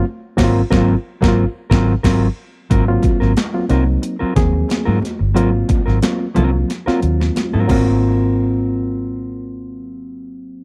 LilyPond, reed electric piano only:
\new Staff \with { instrumentName = "Reed electric piano" } { \time 4/4 \key aes \mixolydian \tempo 4 = 90 r8 <ges bes c' f'>8 <ges bes c' f'>8 r16 <ges bes c' f'>8 r4. r16 | r16 <ges bes c' f'>8. r16 <ges bes c' f'>16 <ges bes c' ees'>8. r16 <ges bes c' aes'>4 r8 | <ges bes c' f'>8. r16 <ges bes c' f'>16 r16 <ges bes c' f'>8 r16 <ges bes c' f'>4~ <ges bes c' f'>16 <ges bes c' f'>8~ | <ges bes c' f'>1 | }